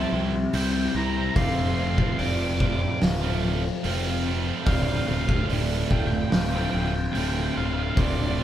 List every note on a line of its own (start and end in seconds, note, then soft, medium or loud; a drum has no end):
0.00 0.13 C3 medium
0.00 0.34 C4 medium
0.00 0.54 C4 medium
0.00 0.10 E4 medium
0.00 0.94 E4 medium
0.00 0.11 G4 medium
0.00 0.13 G4 medium
0.00 1.32 A#4 medium
0.00 0.13 C5 medium
0.00 0.53 E5 loud
0.10 0.46 C2 loud
0.10 0.34 C4 medium
0.10 0.33 E4 medium
0.10 0.32 G4 medium
0.10 0.31 C5 medium
0.32 0.53 C4 medium
0.32 0.53 E4 medium
0.32 0.53 G4 medium
0.32 0.55 C5 medium
0.32 muted distorted electric guitar stroke medium
0.51 0.87 C2 loud
0.51 1.14 C3 loud
0.51 1.15 G3 loud
0.51 0.76 C4 loud
0.51 0.75 E4 loud
0.51 0.73 G4 loud
0.51 0.73 C5 loud
0.51 0.62 G5 medium
0.51 open hi-hat medium
0.62 0.71 G5 medium
0.71 0.95 G4 medium
0.71 0.97 C5 medium
0.71 0.80 G5 medium
0.76 0.94 C4 medium
0.76 0.94 E4 medium
0.80 0.88 G5 medium
0.89 0.97 G5 medium
0.94 1.28 C2 medium
0.94 1.37 C4 medium
0.94 1.34 E4 medium
0.94 1.34 G4 medium
0.94 1.40 C5 loud
0.94 1.04 A#5 loud
1.04 1.12 A#5 medium
1.12 1.38 C5 medium
1.12 1.21 A#5 medium
1.17 1.38 C4 medium
1.17 1.35 E4 medium
1.17 1.34 G4 medium
1.21 1.29 A#5 medium
1.30 1.36 A#5 medium
1.36 2.03 F1 loud
1.36 2.16 F2 loud
1.36 2.18 C3 loud
1.36 1.76 F3 loud
1.36 1.78 A3 medium
1.36 1.79 C4 loud
1.36 4.63 A4 medium
1.36 1.77 F5 loud
1.36 8.44 F5 medium
1.36 1.43 C6 loud
1.36 7.93 D6 medium
1.36 kick loud
1.36 open hi-hat medium
1.40 1.80 F4 loud
1.40 1.51 C6 medium
1.51 1.59 C6 medium
1.60 1.66 C6 medium
1.66 1.74 C6 loud
1.75 2.02 F3 medium
1.75 2.00 A3 medium
1.75 1.99 C4 medium
1.75 2.18 C5 medium
1.75 1.82 C6 medium
1.80 1.98 F4 medium
1.80 1.90 C6 loud
1.91 1.98 C6 medium
1.98 2.20 A3 medium
1.98 2.20 C4 medium
1.98 2.21 F4 medium
1.98 2.06 C6 loud
1.98 kick medium
2.02 2.19 F3 medium
2.02 2.12 C6 medium
2.13 2.18 C6 medium
2.18 2.86 F1 loud
2.18 3.01 F2 loud
2.18 3.01 C3 loud
2.18 2.60 F3 loud
2.18 2.61 A3 loud
2.18 2.62 C4 loud
2.18 3.01 D5 medium
2.18 2.26 D6 loud
2.18 open hi-hat medium
2.22 2.64 F4 loud
2.26 2.34 D6 medium
2.35 2.42 D6 loud
2.42 2.50 D6 medium
2.50 2.58 D6 loud
2.58 2.84 F3 medium
2.58 2.83 A3 medium
2.58 2.66 D6 medium
2.58 kick loud
2.63 2.82 C4 medium
2.63 2.81 F4 loud
2.63 2.72 D6 loud
2.73 2.81 D6 medium
2.81 3.26 F3 medium
2.81 3.25 A3 medium
2.81 3.24 C4 medium
2.81 3.22 F4 medium
2.81 2.89 D6 loud
2.81 muted distorted electric guitar stroke medium
2.90 2.97 D6 medium
3.01 3.69 D1 loud
3.01 3.85 F3 medium
3.01 3.84 F5 loud
3.01 snare loud
3.01 open hi-hat medium
3.23 3.43 F3 medium
3.23 3.44 A3 medium
3.23 3.46 C4 medium
3.23 3.46 F4 medium
3.43 3.67 F3 medium
3.43 3.66 A3 medium
3.43 3.64 C4 medium
3.43 3.63 F4 medium
3.64 3.85 F3 medium
3.64 3.86 A3 medium
3.64 3.87 C4 medium
3.64 3.87 F4 medium
3.64 muted distorted electric guitar stroke medium
3.84 4.51 F1 loud
3.84 4.46 F2 loud
3.84 4.46 C3 loud
3.84 4.08 F3 loud
3.84 4.07 A3 loud
3.84 4.06 C4 loud
3.84 4.04 F4 loud
3.84 open hi-hat medium
4.04 4.26 F3 medium
4.04 4.27 A3 medium
4.04 4.29 C4 medium
4.04 4.29 F4 medium
4.27 4.68 F3 medium
4.27 4.69 A3 loud
4.27 4.70 C4 medium
4.27 4.70 F4 medium
4.44 4.66 F3 medium
4.44 4.66 A3 medium
4.44 4.66 C4 medium
4.44 4.67 F4 medium
4.65 5.00 D1 loud
4.65 5.50 D2 loud
4.65 5.50 A2 loud
4.65 5.09 D3 loud
4.65 5.10 A3 loud
4.65 8.44 C5 medium
4.65 5.08 D5 loud
4.65 4.73 F5 loud
4.65 kick loud
4.65 open hi-hat medium
4.70 5.11 C4 loud
4.70 5.12 F4 loud
4.70 4.81 F5 medium
4.83 4.90 F5 loud
4.90 4.97 F5 medium
4.98 5.05 F5 loud
5.06 5.42 D1 medium
5.06 5.32 D3 medium
5.06 5.49 C5 medium
5.06 5.13 F5 loud
5.10 5.31 A3 medium
5.10 5.30 C4 medium
5.10 5.29 F4 medium
5.10 5.21 F5 loud
5.21 5.28 F5 medium
5.28 5.51 D3 medium
5.28 5.52 A3 medium
5.28 5.53 C4 medium
5.28 5.53 F4 medium
5.28 5.36 F5 loud
5.28 kick loud
5.28 snare soft
5.36 5.44 F5 medium
5.50 5.83 D1 loud
5.50 6.58 D2 loud
5.50 6.32 A2 loud
5.50 5.91 D3 loud
5.50 5.92 A3 loud
5.50 5.94 C4 loud
5.50 5.95 F4 loud
5.50 6.32 D5 medium
5.50 open hi-hat medium
5.91 6.24 D1 medium
5.91 6.15 D3 medium
5.91 6.14 A3 medium
5.91 6.13 C4 medium
5.91 5.98 G5 loud
5.91 kick loud
5.95 6.12 F4 loud
5.95 6.06 G5 medium
6.07 6.14 G5 loud
6.11 6.54 C4 medium
6.11 6.53 F4 medium
6.11 6.21 G5 medium
6.11 muted distorted electric guitar stroke medium
6.15 6.57 D3 medium
6.15 6.56 A3 medium
6.22 6.29 G5 medium
6.32 6.65 D1 loud
6.32 7.15 D3 medium
6.32 7.14 F5 loud
6.32 6.41 G5 loud
6.32 snare loud
6.32 open hi-hat medium
6.42 6.48 G5 medium
6.49 6.57 G5 medium
6.54 6.74 D3 medium
6.54 6.76 A3 medium
6.54 6.76 C4 medium
6.54 6.78 F4 medium
6.54 6.65 G5 medium
6.65 6.72 G5 loud
6.72 7.07 D1 loud
6.72 6.97 D3 medium
6.72 6.96 A3 medium
6.72 6.80 G5 medium
6.77 6.94 C4 medium
6.77 6.94 F4 medium
6.77 6.88 G5 loud
6.89 6.96 G5 medium
6.93 7.16 A3 medium
6.93 7.16 C4 medium
6.93 7.18 F4 medium
6.93 7.04 G5 loud
6.93 muted distorted electric guitar stroke medium
6.98 7.16 D3 medium
7.04 7.12 G5 medium
7.12 7.48 D1 loud
7.12 7.96 D2 loud
7.12 7.77 A2 loud
7.12 7.20 G5 loud
7.12 open hi-hat medium
7.16 7.38 D3 loud
7.16 7.37 A3 loud
7.16 7.34 C4 loud
7.16 7.34 F4 loud
7.21 7.27 G5 medium
7.28 7.36 G5 medium
7.34 7.56 D3 medium
7.34 7.57 A3 medium
7.34 7.58 C4 medium
7.34 7.59 F4 medium
7.34 7.44 G5 medium
7.45 7.51 G5 medium
7.52 7.57 G5 medium
7.57 7.90 D1 medium
7.57 7.97 D3 medium
7.57 7.98 A3 medium
7.57 7.99 C4 medium
7.57 7.99 F4 medium
7.57 7.64 F5 loud
7.65 7.73 F5 medium
7.73 7.97 A3 medium
7.73 7.97 C4 medium
7.73 7.98 F4 medium
7.73 7.82 F5 medium
7.78 7.96 D3 medium
7.83 7.90 F5 medium
7.90 7.98 F5 medium
7.97 8.44 D1 loud
7.97 8.44 D2 medium
7.97 8.44 A2 loud
7.97 8.36 D3 loud
7.97 8.38 A3 loud
7.97 8.39 C4 loud
7.97 8.40 F4 loud
7.97 8.38 D5 medium
7.97 8.06 D5 medium
7.97 8.44 C6 medium
7.97 kick loud
7.97 open hi-hat medium
8.06 8.14 D5 medium
8.14 8.22 D5 medium
8.22 8.28 D5 medium
8.29 8.36 D5 medium
8.36 8.44 D3 medium
8.36 8.44 A3 medium
8.36 8.44 C5 medium
8.36 8.43 D5 medium
8.40 8.44 C4 medium